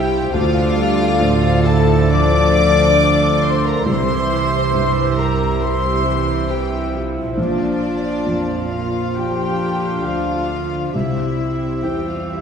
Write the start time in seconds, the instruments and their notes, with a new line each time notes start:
Already playing: felt piano C2 G2, double bass section C2, cello section C3, harp C3 G3 C4 E4 G4 C5 E5, viola section G3 E4, french horn section G4, violin section G4 G5, flute G5
0.11 harp C5
0.33 felt piano D2, double bass section D2, harp D3, cello section D3, viola section F3 D4, french horn section F4, violin section F4 F5, clarinet A4, oboe D5, flute F5
0.56 harp D4
0.78 viola section G3, harp A4
0.99 harp F4
1.21 felt piano A2, viola section F3 F4, harp D5
1.44 harp A5
1.65 viola section E4, violin section A4 A5, french horn section A4, harp D5, flute A5
1.89 harp F4
2.11 harp F3, viola section D4, french horn section D5, violin section D5 D6, flute D6
2.35 harp D4
2.57 viola section D4, harp A4
2.79 harp F4
3.22 harp A5
3.43 french horn section C5, violin section C5 C6, harp D5, flute C6
3.65 harp F4, french horn section A#4, violin section A#4 A#5, flute A#5
3.86 felt piano C2, double bass section C2, cello section C3, harp C3, viola section E3 E4, clarinet G4, violin section C5 C6, french horn section C5, oboe E5, flute C6
4.11 harp G3
4.32 harp E4
4.55 harp C5
4.73 felt piano G2, viola section E3, harp G4
4.97 harp E5
5.17 viola section G3, harp G4, violin section A#4 A#5, french horn section A#4, flute A#5
5.41 harp C5
5.60 viola section G3, harp C4, violin section C5 C6, french horn section C5, flute C6
5.85 harp G3
6.06 viola section E3, harp E4
6.29 harp C5
6.49 viola section E3 E4, violin section G4 G5, french horn section G4, harp G4, flute G5
6.74 harp E5
6.95 viola section F3, harp G4
7.18 harp C5
7.37 felt piano A#1, double bass section A#1, cello section A#2, harp A#2, violin section D4 D5, viola section D4, french horn section D4, clarinet F4, oboe F5
7.41 flute D5
7.61 harp A#3
7.84 harp F4
8.07 harp F5
8.26 felt piano F2, viola section F3 C4, harp A#4
8.51 harp F5
8.71 viola section A#3, violin section F4 F5, french horn section F4, harp A#4, flute F5
9.16 harp F3, viola section F3 D4, violin section G4 G5, french horn section G4, flute G5
9.40 harp A#3
9.61 viola section D3, harp F4
9.85 harp F5
10.04 double bass section D2, cello section D3, viola section F3, violin section F4 F5, french horn section F4, harp A#4, flute F5
10.28 harp F5
10.50 viola section F3, harp A#4
10.73 harp F5
10.93 double bass section C2, felt piano C2, cello section C3, harp C3, viola section G3 C4, violin section E4 E5, french horn section E4, clarinet G4, flute E5, oboe E5
11.17 harp G3
11.39 harp E4
11.61 harp C5
11.83 double bass section E2, cello section E3, viola section G3, felt piano E4 C5, violin section G4 G5, harp G4, french horn section G4, flute G5
12.06 french horn section F4, violin section F4 F5, harp E5, flute F5
12.28 french horn section E4, violin section E4 E5, harp G4, flute E5